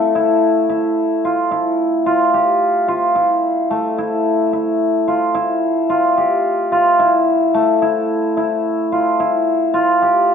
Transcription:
hammered dulcimer
Already playing: A3 E4 G4
0.15 E4
0.69 E4
1.25 F4
1.51 E4
2.06 F4
2.34 G4
2.88 F4
3.15 E4
3.71 A3
3.98 E4
4.53 E4
5.08 F4
5.35 E4
5.90 F4
6.17 G4
6.72 F4
6.99 E4
7.54 A3
7.82 E4
8.37 E4
8.92 F4
9.20 E4
9.74 F4
10.02 G4

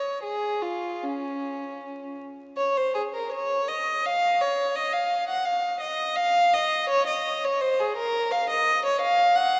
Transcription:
violin
Already playing: C#5
0.23 G#4
0.63 F4
1.03 C#4
2.57 C#5
2.77 C5
2.95 G#4
3.14 A#4
3.32 C#5
3.68 D#5
4.06 F5
4.41 C#5
4.76 D#5
4.93 F5
5.28 F#5
5.45 F5
5.81 D#5
6.16 F5
6.53 D#5
6.89 C#5
7.07 D#5
7.45 C#5
7.61 C5
7.80 G#4
7.97 A#4
8.31 F5
8.50 D#5
8.86 C#5
9.01 F5
9.36 F#5

